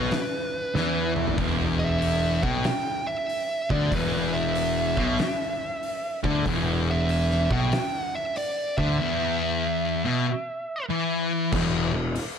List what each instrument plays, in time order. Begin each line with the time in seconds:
Already playing: picked electric bass B1, distorted electric guitar B2, lead electric guitar B4
0.11 snare, open hi-hat
0.75 picked electric bass E2, distorted electric guitar E3, snare
1.16 mid tom
1.27 floor tom
1.37 picked electric bass E1, distorted electric guitar E2, kick, open hi-hat
1.79 lead electric guitar E5
2.02 open hi-hat
2.42 picked electric bass B1, distorted electric guitar B2, lead electric guitar G5, kick
2.64 snare, open hi-hat
3.07 lead electric guitar E5
3.29 open hi-hat
3.70 picked electric bass D2, distorted electric guitar D3, lead electric guitar D5, kick
3.92 picked electric bass E1, distorted electric guitar E2, lead electric guitar B4, kick, open hi-hat
4.33 lead electric guitar E5
4.55 open hi-hat
4.97 picked electric bass B1, distorted electric guitar B2, kick
5.19 snare, open hi-hat
5.83 open hi-hat
6.24 picked electric bass D2, distorted electric guitar D3, kick
6.45 picked electric bass E1, distorted electric guitar E2, kick, open hi-hat
6.91 lead electric guitar E5
7.09 open hi-hat
7.31 snare
7.50 picked electric bass B1, distorted electric guitar B2, lead electric guitar G5, kick
7.72 snare, open hi-hat
7.98 lead electric guitar F#5
8.15 lead electric guitar E5
8.36 lead electric guitar D5, open hi-hat
8.78 picked electric bass D2, distorted electric guitar D3, lead electric guitar E5, kick
8.99 distorted electric guitar E2
10.05 distorted electric guitar B2
10.90 distorted electric guitar E3
11.52 picked electric bass E1, distorted electric guitar E2, kick, crash
11.94 picked electric bass E1, distorted electric guitar E2
12.15 open hi-hat